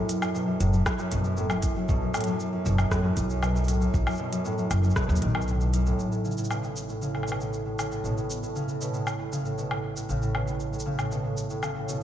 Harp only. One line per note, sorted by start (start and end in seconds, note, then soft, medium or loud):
0.00 0.21 F#2 medium
0.00 0.24 B3 medium
0.22 0.40 F#2 medium
0.34 0.53 B2 medium
0.47 0.65 F#2 medium
0.60 0.78 A2 loud
0.73 0.97 F#2 medium
0.99 1.17 F#2 medium
1.11 1.29 B2 medium
1.24 1.42 F#2 medium
1.37 1.55 A2 medium
1.50 1.75 F#2 medium
1.76 1.94 F#2 medium
1.88 2.06 B2 loud
2.01 2.19 F#2 medium
2.14 2.32 A2 medium
2.27 2.51 F#2 medium
2.53 2.70 F#2 medium
2.65 2.83 B2 loud
2.78 2.96 F#2 medium
2.91 3.09 A2 medium
3.04 3.28 F#2 medium
3.29 3.47 F#2 medium
3.42 3.60 B2 medium
3.55 3.73 F#2 medium
3.68 3.86 A2 medium
3.81 4.05 F#2 medium
4.06 4.24 F#2 medium
4.19 4.37 B2 medium
4.32 4.50 F#2 medium
4.45 4.63 A2 loud
4.58 4.83 F#2 medium
4.84 5.01 F#2 medium
4.97 5.14 B2 medium
5.10 5.40 F#2 medium
5.22 5.40 D#3 medium
5.35 5.52 B2 medium
5.48 5.65 A2 medium
5.61 5.78 B2 medium
5.74 5.91 F#2 medium
5.86 6.04 A2 medium
6.12 6.29 A2 medium
6.25 6.42 C#3 medium
6.37 6.55 A2 medium
6.50 6.68 B2 medium
6.63 6.88 A2 medium
6.89 7.06 A2 medium
7.01 7.19 C#3 medium
7.14 7.32 A2 medium
7.27 7.45 B2 medium
7.40 7.65 A2 medium
7.66 7.83 A2 medium
7.79 7.96 C#3 medium
7.91 8.09 A2 medium
8.04 8.22 B2 medium
8.17 8.42 A2 medium
8.43 8.60 A2 medium
8.55 8.73 C#3 medium
8.68 8.86 A2 medium
8.81 8.99 B2 medium
8.93 9.18 A2 medium
9.19 9.37 A2 medium
9.32 9.50 C#3 medium
9.45 9.63 A2 medium
9.58 9.76 B2 medium
9.71 9.95 A2 medium
9.96 10.14 A2 medium
10.09 10.27 C#3 medium
10.22 10.40 A2 medium
10.35 10.53 B2 medium
10.47 10.72 A2 medium
10.73 10.91 A2 medium
10.86 11.04 C#3 medium
10.99 11.17 A2 medium
11.11 11.29 B2 medium
11.24 11.49 A2 medium
11.50 11.68 A2 medium
11.63 11.81 C#3 medium
11.76 11.94 A2 medium
11.88 12.03 B2 medium